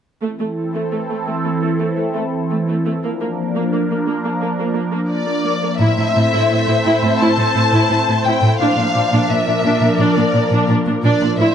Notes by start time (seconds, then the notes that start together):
0.22 E3 A3 C4 E4 A4
0.39 A3
0.74 A3
0.92 A3
1.10 A3
1.27 A3
1.45 A3
1.62 A3
1.80 A3
1.97 A3
2.15 A3
2.50 A3
2.68 A3
2.85 A3
3.01 F3 A#3 D4 A#4
3.21 A#3
3.56 A#3
3.73 A#3
3.90 A#3
4.07 A#3
4.24 A#3
4.41 A#3
4.59 A#3
4.75 A#3
4.92 A#3
5.10 D5
5.28 A#3
5.45 A#3
5.63 A#3
5.79 A2 A3 C4 E4 A4 C5 E5
5.97 A2 E4
6.15 A2 E4
6.32 A2 E4
6.50 A2 E4
6.68 A2 E4
6.85 A2 E4
7.03 A2 E4
7.18 A2 E4 A5
7.38 A2 E4
7.54 A2 E4
7.72 A2 E4
7.89 A2 E4
8.07 A2 E4
8.24 A2 E4 G5
8.42 A2 E4
8.59 A#2 F3 A#3 D4 D5 F5
8.77 A#2 D4
8.94 A#2 D4
9.12 A#2 D4
9.29 A#2 D4 A#4 E5
9.47 A#2 D4
9.64 A#2 D4
9.81 A#2 D4
9.98 A#2 D4 D5
10.17 A#2 D4
10.34 A#2 D4
10.51 A#2 D4
10.69 A#2 D4
10.86 A#2 D4
11.03 A#2 D4 D5
11.21 A#2 D4
11.38 A2 E3 A3 E4 C5 E5